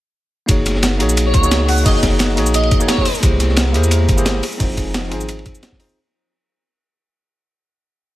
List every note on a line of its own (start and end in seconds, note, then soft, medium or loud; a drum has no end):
0.46 1.02 F#1 loud
0.46 0.96 A#3 medium
0.46 0.98 D#4 medium
0.46 0.98 F#4 medium
0.46 0.99 G#4 medium
0.46 kick loud
0.46 closed hi-hat medium
0.46 ride loud
0.46 shaker soft
0.51 0.99 C#5 loud
0.66 snare soft
0.66 closed hi-hat medium
0.66 ride medium
0.66 shaker soft
0.75 snare soft
0.83 snare loud
0.83 closed hi-hat medium
0.83 ride medium
0.83 shaker medium
0.98 1.33 A#1 medium
0.98 1.40 A#3 medium
0.98 1.41 D#4 medium
0.98 1.41 F#4 medium
0.98 1.42 G#4 medium
0.98 closed hi-hat medium
0.98 ride medium
1.02 1.43 C#5 loud
1.09 shaker medium
1.17 closed hi-hat loud
1.17 ride medium
1.17 shaker medium
1.26 1.33 C#5 medium
1.34 1.85 C#2 medium
1.34 1.55 C#5 medium
1.34 kick loud
1.34 closed hi-hat medium
1.34 ride medium
1.34 shaker soft
1.41 1.82 A#3 medium
1.41 1.83 D#4 medium
1.41 1.84 F#4 medium
1.41 1.84 G#4 medium
1.41 shaker medium
1.46 1.85 C#5 loud
1.51 snare loud
1.51 closed hi-hat medium
1.51 ride medium
1.51 shaker medium
1.61 snare soft
1.68 1.84 F#5 medium
1.68 open hi-hat medium
1.68 ride medium
1.68 shaker soft
1.78 shaker soft
1.83 2.39 F#1 loud
1.83 2.33 A#3 medium
1.83 2.35 D#4 medium
1.83 2.35 F#4 medium
1.83 2.36 G#4 medium
1.83 1.92 D#5 medium
1.83 kick loud
1.83 closed hi-hat medium
1.83 open hi-hat medium
1.83 shaker soft
1.88 2.36 C#5 loud
1.95 2.00 D#5 medium
2.03 kick medium
2.03 snare loud
2.03 closed hi-hat medium
2.03 ride medium
2.03 shaker soft
2.19 snare loud
2.19 closed hi-hat medium
2.19 ride medium
2.19 shaker soft
2.35 2.70 A#1 medium
2.35 2.77 A#3 medium
2.35 2.78 D#4 medium
2.35 2.78 F#4 medium
2.35 2.79 G#4 medium
2.35 closed hi-hat medium
2.35 ride medium
2.39 2.80 C#5 loud
2.46 shaker medium
2.54 2.75 D#5 medium
2.54 closed hi-hat loud
2.54 ride medium
2.54 shaker medium
2.63 ride soft
2.71 kick loud
2.71 closed hi-hat medium
2.71 ride medium
2.71 shaker soft
2.79 3.04 A#3 medium
2.79 3.04 D#4 medium
2.79 3.05 F#4 medium
2.79 3.05 G#4 medium
2.79 3.05 C#5 loud
2.79 shaker medium
2.88 3.09 C#5 medium
2.88 snare loud
2.88 closed hi-hat loud
2.88 ride medium
2.88 shaker soft
2.98 kick medium
2.98 snare medium
3.05 open hi-hat medium
3.05 ride medium
3.05 shaker soft
3.15 shaker soft
3.20 3.76 C2 loud
3.20 4.42 G#3 medium
3.20 3.71 A#3 medium
3.20 3.72 E4 medium
3.20 4.42 E4 medium
3.20 3.72 G4 medium
3.20 3.73 G#4 medium
3.20 4.42 A#4 medium
3.20 kick loud
3.20 closed hi-hat medium
3.20 ride medium
3.20 shaker soft
3.25 3.74 C5 loud
3.40 snare soft
3.40 closed hi-hat medium
3.40 ride medium
3.40 shaker soft
3.49 snare soft
3.56 snare loud
3.56 closed hi-hat medium
3.56 ride medium
3.56 shaker soft
3.72 4.07 E2 medium
3.72 4.14 A#3 loud
3.72 4.15 E4 medium
3.72 4.16 G4 medium
3.72 4.16 G#4 medium
3.72 closed hi-hat medium
3.72 ride medium
3.77 4.17 C5 loud
3.84 shaker medium
3.91 closed hi-hat medium
3.91 ride medium
3.91 shaker soft
4.09 4.42 G1 medium
4.09 kick loud
4.09 closed hi-hat medium
4.09 ride medium
4.09 shaker soft
4.17 4.41 A#3 loud
4.17 4.42 E4 medium
4.17 4.42 G4 medium
4.17 4.42 G#4 medium
4.17 4.43 C5 loud
4.17 shaker medium
4.26 snare loud
4.26 closed hi-hat medium
4.26 ride medium
4.26 shaker soft
4.35 snare soft
4.43 5.96 F3 medium
4.43 5.96 D#4 medium
4.43 5.96 G#4 medium
4.43 open hi-hat medium
4.43 ride medium
4.43 shaker soft
4.52 shaker soft
4.58 5.13 F1 loud
4.58 5.08 C4 medium
4.58 5.09 D#4 medium
4.58 5.10 F4 medium
4.58 5.10 G#4 medium
4.58 kick loud
4.58 closed hi-hat medium
4.58 open hi-hat medium
4.58 shaker soft
4.63 5.11 C5 loud
4.77 kick medium
4.77 closed hi-hat medium
4.77 ride medium
4.77 shaker soft
4.94 snare loud
4.94 closed hi-hat medium
4.94 ride medium
4.94 shaker soft
5.09 5.45 G#1 medium
5.09 5.52 C4 medium
5.09 5.52 D#4 medium
5.09 5.53 F4 medium
5.09 5.53 G#4 medium
5.09 closed hi-hat medium
5.09 ride medium
5.14 5.54 C5 loud
5.21 shaker medium
5.29 closed hi-hat medium
5.29 ride medium
5.29 shaker soft
5.39 ride soft
5.46 kick loud
5.46 closed hi-hat medium
5.46 ride medium
5.46 shaker soft
5.55 shaker medium
5.63 snare loud
5.63 closed hi-hat medium
5.63 ride medium
5.63 shaker soft
5.72 kick medium
5.72 snare medium
5.79 5.95 C4 medium
5.79 5.95 D#4 medium
5.79 5.95 F4 medium
5.79 5.96 G#4 medium
5.79 5.96 C5 loud
5.79 open hi-hat medium
5.79 ride medium
5.79 shaker soft
5.89 shaker soft